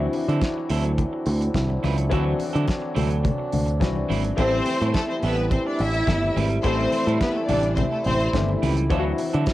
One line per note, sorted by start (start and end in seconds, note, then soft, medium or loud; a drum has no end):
0.00 4.33 D3 medium
0.00 2.06 E3 medium
0.00 4.33 F#3 medium
0.00 2.07 C4 medium
0.00 4.33 C4 medium
0.00 2.08 D4 medium
0.00 2.07 E4 medium
0.00 2.08 F#4 medium
0.00 muted clean electric guitar stroke soft
0.13 muted clean electric guitar stroke soft
0.13 open hi-hat medium
0.13 muted conga soft
0.28 0.38 D3 medium
0.28 0.41 F#3 soft
0.28 0.41 C4 medium
0.28 0.42 E4 medium
0.28 0.42 A4 medium
0.28 closed hi-hat medium
0.41 muted clean electric guitar stroke soft
0.41 kick loud
0.41 snare loud
0.41 closed hi-hat medium
0.41 high conga medium
0.58 muted clean electric guitar stroke soft
0.69 1.03 D2 medium
0.69 0.91 F#3 medium
0.69 0.85 C4 loud
0.69 0.85 E4 loud
0.69 0.84 A4 loud
0.69 open hi-hat medium
0.84 muted clean electric guitar stroke soft
0.84 closed hi-hat soft
0.98 muted clean electric guitar stroke soft
0.98 kick loud
0.98 closed hi-hat medium
0.98 muted conga medium
1.13 muted clean electric guitar stroke soft
1.26 1.48 D2 loud
1.26 open hi-hat medium
1.26 muted conga soft
1.41 muted clean electric guitar stroke soft
1.41 closed hi-hat soft
1.54 1.76 C2 medium
1.54 muted clean electric guitar stroke soft
1.54 kick medium
1.54 snare loud
1.54 closed hi-hat medium
1.54 high conga medium
1.69 muted clean electric guitar stroke soft
1.69 high conga medium
1.83 2.12 C#2 medium
1.83 2.05 F#3 medium
1.83 1.98 C4 medium
1.83 1.98 E4 medium
1.83 1.98 B4 medium
1.83 snare soft
1.83 open hi-hat medium
1.83 high conga medium
1.98 muted clean electric guitar stroke soft
1.98 closed hi-hat medium
2.09 2.33 D2 loud
2.09 3.77 E3 medium
2.09 2.33 F#3 medium
2.09 3.77 C4 medium
2.09 2.25 C4 medium
2.09 3.78 D4 medium
2.09 4.36 D4 medium
2.09 2.25 E4 loud
2.09 3.78 F#4 medium
2.09 2.24 A4 medium
2.09 kick loud
2.09 closed hi-hat medium
2.26 muted clean electric guitar stroke soft
2.39 muted clean electric guitar stroke soft
2.39 open hi-hat medium
2.39 muted conga medium
2.53 2.65 D3 medium
2.53 2.66 F#3 medium
2.53 2.66 C4 medium
2.53 2.66 E4 medium
2.53 2.67 A4 medium
2.53 closed hi-hat medium
2.67 muted clean electric guitar stroke soft
2.67 kick loud
2.67 snare loud
2.67 closed hi-hat medium
2.67 high conga medium
2.82 muted clean electric guitar stroke medium
2.95 3.29 D2 medium
2.95 3.17 F#3 medium
2.95 3.10 C4 medium
2.95 3.09 E4 medium
2.95 3.09 A4 medium
2.95 open hi-hat medium
2.95 low conga medium
3.10 muted clean electric guitar stroke soft
3.10 closed hi-hat soft
3.24 muted clean electric guitar stroke soft
3.24 kick loud
3.24 closed hi-hat medium
3.24 muted conga medium
3.24 low conga loud
3.38 muted clean electric guitar stroke soft
3.52 3.81 D2 loud
3.52 open hi-hat medium
3.52 muted conga soft
3.52 low conga medium
3.66 muted clean electric guitar stroke soft
3.66 closed hi-hat soft
3.80 4.03 C2 loud
3.80 4.35 E3 medium
3.80 4.37 C4 soft
3.80 4.38 D4 soft
3.80 4.38 F#4 medium
3.80 muted clean electric guitar stroke soft
3.80 kick loud
3.80 snare loud
3.80 closed hi-hat medium
3.80 high conga medium
3.95 muted clean electric guitar stroke soft
3.95 high conga medium
4.09 4.31 G#1 medium
4.09 4.31 F#3 medium
4.09 4.23 C4 medium
4.09 4.24 E4 medium
4.09 4.24 B4 medium
4.09 open hi-hat medium
4.09 high conga medium
4.24 muted clean electric guitar stroke soft
4.24 closed hi-hat medium
4.37 4.60 A1 medium
4.37 8.87 C3 medium
4.37 6.59 E3 medium
4.37 4.59 G3 medium
4.37 8.87 G3 medium
4.37 6.60 A3 medium
4.37 8.87 A3 medium
4.37 4.53 C4 medium
4.37 4.91 C4 loud
4.37 6.61 C4 medium
4.37 4.52 E4 medium
4.37 9.53 E4 medium
4.37 6.61 G4 medium
4.37 4.52 A4 medium
4.37 4.91 C5 loud
4.37 kick loud
4.37 closed hi-hat medium
4.53 muted clean electric guitar stroke soft
4.66 muted clean electric guitar stroke soft
4.66 open hi-hat medium
4.66 muted conga medium
4.81 4.91 A2 loud
4.81 4.94 G3 soft
4.81 4.94 C4 medium
4.81 4.94 E4 soft
4.81 4.95 A4 medium
4.81 closed hi-hat medium
4.94 5.06 A3 medium
4.94 5.06 A4 loud
4.94 muted clean electric guitar stroke soft
4.94 kick loud
4.94 snare loud
4.94 closed hi-hat medium
4.94 high conga medium
5.08 5.19 C4 medium
5.08 5.19 C5 medium
5.08 muted clean electric guitar stroke soft
5.22 5.56 A1 loud
5.22 5.45 G3 medium
5.22 5.45 B3 medium
5.22 5.38 C4 medium
5.22 5.37 E4 medium
5.22 5.36 A4 medium
5.22 5.45 B4 loud
5.22 open hi-hat medium
5.37 muted clean electric guitar stroke soft
5.37 closed hi-hat soft
5.50 5.63 C4 medium
5.50 5.62 C5 medium
5.50 muted clean electric guitar stroke soft
5.50 kick loud
5.50 closed hi-hat medium
5.50 muted conga medium
5.66 5.77 D4 medium
5.66 5.77 D5 medium
5.66 muted clean electric guitar stroke medium
5.78 6.01 A1 medium
5.78 6.32 E4 loud
5.78 6.32 E5 loud
5.78 open hi-hat medium
5.78 muted conga soft
5.94 muted clean electric guitar stroke soft
5.94 closed hi-hat soft
6.07 6.29 G1 loud
6.07 muted clean electric guitar stroke soft
6.07 kick loud
6.07 snare loud
6.07 closed hi-hat medium
6.07 high conga medium
6.23 muted clean electric guitar stroke medium
6.23 high conga medium
6.36 6.58 G#1 loud
6.36 6.58 G3 medium
6.36 6.50 C4 medium
6.36 6.49 E4 medium
6.36 6.50 B4 medium
6.36 open hi-hat medium
6.36 high conga medium
6.50 muted clean electric guitar stroke soft
6.50 closed hi-hat soft
6.63 6.86 A1 loud
6.63 8.30 E3 medium
6.63 6.86 G3 medium
6.63 8.30 A3 medium
6.63 7.17 C4 loud
6.63 6.79 C4 loud
6.63 8.31 C4 medium
6.63 6.78 E4 loud
6.63 8.31 G4 medium
6.63 6.77 A4 loud
6.63 7.17 C5 loud
6.63 kick loud
6.63 closed hi-hat medium
6.78 muted clean electric guitar stroke medium
6.92 muted clean electric guitar stroke soft
6.92 open hi-hat medium
6.92 muted conga soft
7.07 7.17 A2 medium
7.07 7.19 G3 medium
7.07 7.20 C4 medium
7.07 7.20 E4 medium
7.07 7.20 A4 medium
7.07 closed hi-hat soft
7.20 7.32 B3 medium
7.20 7.32 B4 medium
7.20 muted clean electric guitar stroke soft
7.20 kick loud
7.20 snare loud
7.20 closed hi-hat medium
7.20 high conga medium
7.34 7.45 A3 medium
7.34 7.46 A4 medium
7.34 muted clean electric guitar stroke soft
7.46 7.82 A1 medium
7.46 7.71 G3 medium
7.46 7.63 C4 medium
7.46 7.70 D4 medium
7.46 7.63 E4 medium
7.46 7.63 A4 loud
7.46 7.70 D5 loud
7.46 open hi-hat medium
7.46 low conga medium
7.63 muted clean electric guitar stroke soft
7.63 closed hi-hat soft
7.76 7.88 C4 medium
7.76 7.89 C5 medium
7.76 muted clean electric guitar stroke soft
7.76 kick loud
7.76 closed hi-hat medium
7.76 muted conga medium
7.76 low conga medium
7.91 8.02 A3 medium
7.91 8.02 A4 medium
7.91 muted clean electric guitar stroke soft
8.04 8.27 A1 medium
8.04 8.27 C4 loud
8.04 8.27 C5 loud
8.04 open hi-hat medium
8.04 muted conga soft
8.04 low conga medium
8.20 muted clean electric guitar stroke soft
8.20 closed hi-hat soft
8.33 8.55 G1 loud
8.33 8.88 E3 soft
8.33 8.90 A3 soft
8.33 8.89 C4 medium
8.33 8.90 D4 medium
8.33 muted clean electric guitar stroke soft
8.33 kick loud
8.33 snare loud
8.33 closed hi-hat medium
8.33 high conga medium
8.49 muted clean electric guitar stroke soft
8.49 high conga medium
8.62 8.91 C#2 medium
8.62 8.84 G3 medium
8.62 8.77 C4 medium
8.62 8.76 E4 medium
8.62 8.77 B4 loud
8.62 open hi-hat medium
8.62 high conga medium
8.77 muted clean electric guitar stroke soft
8.77 closed hi-hat medium
8.90 9.12 D2 loud
8.90 9.53 D3 medium
8.90 9.53 E3 medium
8.90 9.12 F#3 medium
8.90 9.53 F#3 medium
8.90 9.53 C4 medium
8.90 9.05 C4 medium
8.90 9.53 C4 medium
8.90 9.53 D4 medium
8.90 9.05 E4 medium
8.90 8.98 F4 medium
8.90 9.04 A4 loud
8.90 kick loud
8.90 closed hi-hat medium
8.99 9.53 F#4 medium
9.05 muted clean electric guitar stroke medium
9.18 muted clean electric guitar stroke soft
9.18 open hi-hat medium
9.18 muted conga soft
9.33 9.44 D3 medium
9.33 9.45 F#3 medium
9.33 9.45 C4 medium
9.33 9.46 E4 medium
9.33 9.46 A4 medium
9.33 closed hi-hat soft
9.46 muted clean electric guitar stroke soft
9.46 kick loud
9.46 snare loud
9.46 closed hi-hat medium
9.46 high conga medium